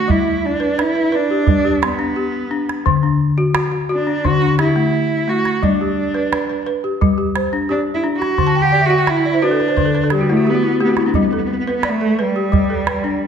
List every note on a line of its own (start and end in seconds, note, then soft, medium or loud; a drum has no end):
0.00 0.11 F#4 medium
0.08 0.43 G3 medium
0.08 0.47 E4 medium
0.08 calabash thump medium
0.45 0.83 D4 medium
0.60 0.77 B4 medium
0.78 1.16 E4 loud
0.78 0.94 B4 medium
0.78 calabash click medium
0.95 1.11 B4 medium
1.12 1.87 D4 medium
1.12 1.48 B4 medium
1.31 1.64 G4 medium
1.46 1.82 G3 medium
1.46 calabash thump medium
1.46 calabash click soft
1.65 2.15 G4 medium
1.82 2.88 B3 medium
1.82 2.35 C6 medium
1.82 calabash click medium
1.99 2.34 D4 medium
2.16 2.69 G4 medium
2.51 2.86 D4 medium
2.69 calabash click soft
2.86 3.21 D3 loud
2.86 calabash thump medium
3.03 3.55 D4 medium
3.38 3.53 F#4 medium
3.54 3.70 F#4 medium
3.54 calabash click medium
3.72 3.88 F#4 medium
3.89 4.27 D4 medium
3.89 4.24 F#4 medium
4.07 4.40 D4 medium
4.25 4.59 D3 medium
4.25 4.59 F#4 loud
4.25 calabash thump medium
4.25 calabash click soft
4.42 4.94 D4 medium
4.58 5.30 E4 medium
4.58 5.11 G4 medium
4.58 calabash click medium
4.76 5.11 A3 medium
5.28 5.63 A3 medium
5.28 5.65 F#4 medium
5.45 calabash click soft
5.62 5.97 G3 medium
5.62 6.67 D4 medium
5.62 calabash thump medium
5.81 6.33 G4 medium
6.14 6.31 B4 medium
6.32 6.48 B4 medium
6.32 calabash click medium
6.50 6.65 B4 medium
6.67 7.01 B4 medium
6.84 7.17 G4 medium
7.01 7.36 G3 loud
7.01 calabash thump medium
7.01 calabash click soft
7.18 7.68 G4 medium
7.36 7.88 C5 medium
7.36 calabash click medium
7.53 7.88 D4 medium
7.69 7.81 D4 medium
7.69 8.22 G4 medium
7.94 8.04 E4 medium
8.04 8.39 D4 medium
8.16 8.63 F#4 medium
8.22 calabash click soft
8.38 8.73 D3 medium
8.38 calabash thump medium
8.38 calabash click soft
8.47 8.63 A5 medium
8.55 8.72 G5 medium
8.62 8.87 G4 loud
8.62 8.80 F#5 medium
8.72 8.89 D5 medium
8.81 8.98 E5 medium
8.85 9.10 F#4 medium
8.90 9.25 F#4 medium
8.90 9.06 F#5 medium
8.98 9.15 G5 medium
9.07 9.45 E4 loud
9.07 9.24 F#5 medium
9.07 calabash click medium
9.17 9.33 E5 medium
9.25 9.41 D5 medium
9.34 9.50 C5 medium
9.42 10.12 D4 medium
9.42 9.77 F#4 medium
9.42 9.59 B4 medium
9.42 calabash click soft
9.51 9.67 A4 medium
9.60 9.75 B4 medium
9.60 calabash click soft
9.68 9.85 C5 medium
9.77 10.12 D3 medium
9.77 9.93 B4 medium
9.77 calabash thump medium
9.77 calabash click soft
9.85 10.02 A4 medium
9.95 10.11 B4 medium
9.95 calabash click soft
10.04 10.19 A4 medium
10.10 10.28 G4 medium
10.10 calabash click soft
10.15 10.34 G3 medium
10.21 10.36 F#4 medium
10.30 10.64 A3 medium
10.30 10.51 A3 loud
10.30 10.45 E4 medium
10.37 10.53 F#4 medium
10.45 10.63 G4 medium
10.45 calabash click soft
10.50 10.82 B3 loud
10.54 10.71 F#4 medium
10.63 10.79 E4 medium
10.63 calabash click soft
10.72 10.88 F#4 medium
10.80 11.15 A3 medium
10.80 10.90 B3 medium
10.80 10.97 G4 medium
10.89 10.97 B3 medium
10.89 11.05 F#4 medium
10.97 11.04 B3 medium
10.97 11.14 E4 medium
10.97 calabash click soft
11.05 11.11 B3 medium
11.05 11.23 D4 medium
11.13 11.50 G3 medium
11.13 11.19 B3 medium
11.13 calabash thump medium
11.20 11.26 B3 medium
11.28 11.34 B3 medium
11.33 11.41 B3 medium
11.33 11.84 A4 medium
11.44 11.50 B3 medium
11.51 11.57 B3 medium
11.58 11.64 B3 medium
11.67 11.72 B3 medium
11.67 12.02 B4 medium
11.74 11.91 B3 medium
11.83 12.36 D5 medium
11.83 calabash click medium
11.89 12.24 A3 loud
12.01 12.53 A4 medium
12.19 13.27 G3 medium
12.19 12.53 B4 medium
12.36 12.88 G4 medium
12.52 12.87 G3 medium
12.52 calabash thump medium
12.52 calabash click soft
12.70 13.22 A4 medium
12.87 13.27 B4 medium
12.87 calabash click medium
13.04 13.27 D4 medium